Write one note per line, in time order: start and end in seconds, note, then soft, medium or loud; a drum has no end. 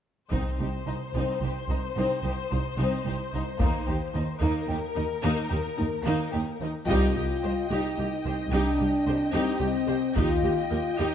0.31 0.40 C2 soft
0.31 0.58 C4 soft
0.31 0.57 D#4 soft
0.31 4.37 C5 soft
0.31 taiko soft
0.60 0.68 C2 soft
0.60 0.68 D#4 soft
0.60 0.68 G4 soft
0.86 0.94 C2 soft
0.86 0.95 C2 soft
0.86 0.95 D#4 soft
1.14 1.22 C2 soft
1.14 1.41 C4 soft
1.14 1.40 D#4 soft
1.41 1.49 C2 soft
1.41 1.50 C2 soft
1.41 1.50 D#4 soft
1.41 1.51 G4 soft
1.69 1.77 C2 soft
1.69 1.78 D#4 soft
1.96 2.04 C2 soft
1.96 2.05 C2 soft
1.96 2.22 C4 soft
1.96 2.22 D#4 soft
2.23 2.31 C2 soft
2.23 2.32 C2 soft
2.23 2.32 D#4 soft
2.23 2.32 G4 soft
2.51 2.59 C2 soft
2.51 2.60 C2 soft
2.51 2.59 D#4 soft
2.51 2.60 D#4 soft
2.78 2.86 C2 medium
2.78 2.87 C2 medium
2.78 3.04 C4 soft
2.78 3.03 D#4 soft
3.05 3.14 C2 soft
3.05 3.13 D#4 soft
3.05 3.15 G4 soft
3.32 3.41 C2 soft
3.32 3.42 C2 soft
3.32 3.40 D#4 soft
3.32 3.43 D#4 soft
3.60 3.68 D#2 medium
3.60 3.69 D#2 medium
3.60 3.85 A#3 medium
3.60 3.85 D#4 soft
3.60 taiko medium
3.87 3.95 D#2 soft
3.87 3.96 D#2 soft
3.87 3.95 D#4 soft
3.87 3.96 G4 soft
4.14 4.22 D#2 soft
4.14 4.23 D#2 soft
4.14 4.22 D#4 soft
4.41 4.50 D#2 medium
4.41 4.66 A#3 medium
4.41 4.66 D#4 medium
4.41 6.68 A#4 medium
4.68 4.76 D#2 soft
4.68 4.77 D#2 soft
4.68 4.77 D#4 soft
4.68 4.76 G4 soft
4.95 5.05 D#2 soft
4.95 5.03 D#4 soft
4.95 5.04 D#4 soft
5.22 5.31 D#2 medium
5.22 5.48 A#3 medium
5.22 5.48 D#4 medium
5.50 5.58 D#2 soft
5.50 5.59 D#2 soft
5.50 5.58 D#4 soft
5.50 5.58 G4 soft
5.77 5.86 D#2 soft
5.77 5.87 D#2 soft
5.77 5.85 D#4 soft
6.04 6.13 D#2 medium
6.04 6.14 D#2 medium
6.04 6.30 A#3 medium
6.04 6.30 D#4 medium
6.31 6.41 D#2 soft
6.31 6.41 D#4 soft
6.31 6.39 G4 soft
6.61 6.69 D#2 soft
6.61 6.69 D#4 soft
6.61 6.70 D#4 soft
6.86 7.14 C2 medium
6.86 7.14 D#4 medium
6.86 7.66 F4 medium
6.86 7.14 G4 medium
6.86 10.12 D#5 medium
6.86 10.12 G5 medium
6.86 taiko medium
7.17 7.25 C2 soft
7.17 7.25 G4 soft
7.43 7.52 C2 soft
7.43 7.52 G4 soft
7.43 7.51 C5 soft
7.70 7.79 C2 medium
7.70 8.52 D#4 medium
7.70 7.96 D#4 soft
7.70 7.96 G4 medium
7.98 8.06 C2 soft
7.98 8.07 G4 soft
8.25 8.33 C2 soft
8.25 8.33 G4 soft
8.25 8.33 C5 soft
8.52 8.77 C2 medium
8.52 8.60 C2 medium
8.52 9.32 D4 medium
8.52 8.77 D#4 medium
8.52 8.77 G4 medium
8.80 8.88 C2 soft
8.80 8.88 G4 soft
9.07 9.15 C2 soft
9.07 9.15 G4 soft
9.07 9.15 C5 soft
9.32 9.42 C2 medium
9.32 10.16 C4 medium
9.32 9.59 D#4 medium
9.32 9.58 G4 medium
9.59 9.69 C2 soft
9.59 9.68 G4 soft
9.87 9.96 C2 soft
9.87 9.95 G4 soft
9.87 9.95 C5 soft
10.15 10.42 D#2 medium
10.15 10.24 D#2 medium
10.15 10.42 D#4 medium
10.15 10.98 F4 medium
10.15 10.41 G4 medium
10.15 11.15 D#5 medium
10.15 11.15 G5 medium
10.15 taiko medium
10.43 10.51 D#2 soft
10.43 10.52 G4 soft
10.70 10.79 D#2 soft
10.70 10.79 G4 soft
10.70 10.78 A#4 soft
10.97 11.08 D#2 medium
10.97 11.15 D#4 medium
10.97 11.15 G4 medium